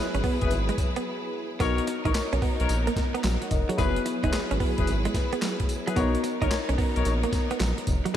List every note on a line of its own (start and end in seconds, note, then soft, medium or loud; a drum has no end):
0.00 1.58 F#3 medium
0.00 1.58 B3 medium
0.00 1.56 E4 medium
0.00 1.58 E4 medium
0.00 1.56 F#4 medium
0.00 1.57 G#4 medium
0.00 1.58 G#4 medium
0.00 1.58 B4 loud
0.00 1.57 C#5 medium
0.14 0.21 G#1 medium
0.14 0.21 C#4 medium
0.14 closed hi-hat soft
0.24 0.37 B3 medium
0.24 kick medium
0.24 open hi-hat medium
0.41 0.49 F#1 loud
0.41 0.57 E4 medium
0.41 0.57 G#4 medium
0.41 0.57 B4 medium
0.41 kick loud
0.41 closed hi-hat soft
0.51 0.71 G#1 loud
0.51 closed hi-hat medium
0.51 tambourine medium
0.69 0.76 G#3 medium
0.69 closed hi-hat medium
0.78 muted clean electric guitar stroke soft
0.78 kick loud
0.78 closed hi-hat medium
0.78 tambourine medium
0.96 1.03 B3 medium
0.96 closed hi-hat medium
1.59 1.80 B1 loud
1.59 3.74 B3 medium
1.59 1.73 B3 loud
1.59 3.76 B3 medium
1.59 1.81 D#4 medium
1.59 3.74 D#4 medium
1.59 3.76 D#4 medium
1.59 3.75 F#4 medium
1.59 1.81 A#4 medium
1.59 3.76 A#4 medium
1.59 2.94 A#4 medium
1.59 1.81 C#5 loud
1.59 2.95 C#5 medium
1.59 kick loud
1.59 closed hi-hat medium
1.59 tambourine medium
1.78 closed hi-hat medium
1.87 muted clean electric guitar stroke soft
1.87 closed hi-hat medium
1.87 tambourine medium
2.05 2.12 A#1 medium
2.05 2.21 D#4 medium
2.05 2.12 D#4 medium
2.05 2.21 A#4 medium
2.05 2.21 C#5 medium
2.05 kick medium
2.05 closed hi-hat medium
2.15 muted clean electric guitar stroke soft
2.15 snare loud
2.15 clap medium
2.15 closed hi-hat medium
2.15 tambourine loud
2.33 2.40 B1 medium
2.33 2.39 C#4 medium
2.33 closed hi-hat soft
2.42 2.55 B3 medium
2.42 kick loud
2.42 open hi-hat medium
2.59 2.67 B1 medium
2.59 2.75 D#4 medium
2.59 2.75 A#4 medium
2.59 2.76 C#5 medium
2.59 closed hi-hat medium
2.69 2.89 A#1 loud
2.69 closed hi-hat medium
2.69 tambourine medium
2.87 2.94 A#3 medium
2.87 closed hi-hat medium
2.96 muted clean electric guitar stroke soft
2.96 kick loud
2.96 snare medium
2.96 closed hi-hat medium
2.96 tambourine medium
3.14 3.21 B3 medium
3.14 closed hi-hat soft
3.24 3.37 A#1 medium
3.24 3.37 F#3 medium
3.24 snare loud
3.24 clap medium
3.24 closed hi-hat medium
3.24 tambourine loud
3.42 3.51 C#5 medium
3.42 3.51 F#5 medium
3.42 muted clean electric guitar stroke medium
3.42 closed hi-hat medium
3.51 3.64 F1 medium
3.51 3.69 A#4 medium
3.51 3.68 D#5 medium
3.51 kick loud
3.51 closed hi-hat medium
3.51 tambourine medium
3.69 3.76 F#3 medium
3.69 3.78 G#4 medium
3.69 3.79 C#5 medium
3.69 closed hi-hat medium
3.78 3.98 F#1 loud
3.78 5.94 F#3 medium
3.78 3.92 F#3 medium
3.78 5.92 B3 medium
3.78 3.99 E4 loud
3.78 5.94 E4 medium
3.78 5.92 E4 medium
3.78 5.93 F#4 medium
3.78 3.99 G#4 medium
3.78 5.94 G#4 medium
3.78 5.93 G#4 medium
3.78 5.94 B4 medium
3.78 4.00 B4 loud
3.78 5.93 C#5 medium
3.78 kick loud
3.78 closed hi-hat medium
3.78 tambourine medium
3.96 closed hi-hat medium
4.06 muted clean electric guitar stroke soft
4.06 closed hi-hat medium
4.06 tambourine medium
4.23 4.30 F#1 medium
4.23 4.30 D#4 medium
4.23 4.39 E4 medium
4.23 4.39 G#4 medium
4.23 4.39 B4 medium
4.23 kick medium
4.23 closed hi-hat medium
4.33 4.40 G#1 medium
4.33 muted clean electric guitar stroke soft
4.33 snare loud
4.33 clap loud
4.33 closed hi-hat medium
4.33 tambourine medium
4.51 4.58 G#1 medium
4.51 4.58 C#4 medium
4.51 closed hi-hat soft
4.60 4.73 B3 medium
4.60 kick loud
4.60 open hi-hat medium
4.78 4.85 F#1 loud
4.78 4.93 E4 medium
4.78 4.94 G#4 medium
4.78 4.94 B4 medium
4.78 kick loud
4.78 closed hi-hat medium
4.87 5.07 G#1 loud
4.87 closed hi-hat medium
4.87 tambourine medium
5.05 5.12 G#3 medium
5.05 closed hi-hat medium
5.14 muted clean electric guitar stroke soft
5.14 kick medium
5.14 snare medium
5.14 closed hi-hat medium
5.14 tambourine medium
5.33 5.39 B3 medium
5.33 closed hi-hat medium
5.42 5.55 F#3 medium
5.42 snare loud
5.42 clap medium
5.42 closed hi-hat medium
5.42 tambourine loud
5.60 muted clean electric guitar stroke soft
5.60 kick medium
5.60 closed hi-hat medium
5.69 closed hi-hat medium
5.69 tambourine medium
5.87 5.94 F#3 medium
5.87 6.03 E4 medium
5.87 6.03 G#4 medium
5.87 6.03 B4 medium
5.87 closed hi-hat medium
5.96 6.16 B1 loud
5.96 8.10 B3 medium
5.96 6.10 B3 loud
5.96 8.13 B3 medium
5.96 6.17 D#4 loud
5.96 8.10 D#4 medium
5.96 8.13 D#4 medium
5.96 8.11 F#4 medium
5.96 6.18 A#4 medium
5.96 8.13 A#4 medium
5.96 8.11 A#4 medium
5.96 6.18 C#5 loud
5.96 8.11 C#5 medium
5.96 kick loud
5.96 closed hi-hat medium
5.96 tambourine medium
6.15 closed hi-hat medium
6.24 muted clean electric guitar stroke medium
6.24 closed hi-hat medium
6.24 tambourine medium
6.41 6.48 A#1 medium
6.41 6.57 D#4 medium
6.41 6.48 D#4 medium
6.41 6.57 A#4 medium
6.41 6.57 C#5 medium
6.41 kick medium
6.41 closed hi-hat medium
6.51 muted clean electric guitar stroke soft
6.51 snare loud
6.51 clap loud
6.51 closed hi-hat medium
6.51 tambourine medium
6.69 6.76 B1 medium
6.69 6.76 C#4 medium
6.69 closed hi-hat soft
6.78 6.91 B3 medium
6.78 kick loud
6.78 open hi-hat medium
6.96 7.03 B1 medium
6.96 7.12 D#4 medium
6.96 7.12 A#4 medium
6.96 7.12 C#5 medium
6.96 closed hi-hat medium
7.05 7.25 A#1 loud
7.05 closed hi-hat medium
7.05 tambourine medium
7.23 7.30 A#3 medium
7.23 closed hi-hat medium
7.33 muted clean electric guitar stroke medium
7.33 kick loud
7.33 snare medium
7.33 closed hi-hat medium
7.33 tambourine medium
7.51 7.58 B3 medium
7.51 closed hi-hat medium
7.60 7.73 A#1 medium
7.60 7.73 F#3 medium
7.60 snare loud
7.60 clap medium
7.60 closed hi-hat medium
7.60 tambourine loud
7.78 muted clean electric guitar stroke soft
7.78 closed hi-hat medium
7.87 8.00 F1 loud
7.87 kick loud
7.87 closed hi-hat medium
7.87 tambourine medium
8.05 8.12 F#3 medium
8.05 closed hi-hat medium